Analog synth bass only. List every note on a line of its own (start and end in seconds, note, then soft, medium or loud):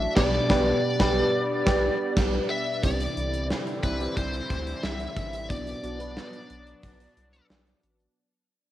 0.17 0.39 B1 loud
0.50 0.73 B1 loud
1.00 1.23 B1 loud
1.67 1.89 B1 loud
2.17 2.39 B1 loud
2.83 3.07 C2 loud
3.17 3.53 C2 loud
3.83 4.07 C2 medium
4.17 4.41 C2 loud
4.50 4.74 D2 medium
4.84 5.07 C2 loud
5.17 5.52 A1 medium
5.50 5.74 B1 loud
5.83 6.19 B1 medium
6.50 6.74 B1 medium
6.83 7.07 B1 medium
7.17 7.41 C2 medium
7.50 7.74 B1 medium
7.83 8.07 A1 medium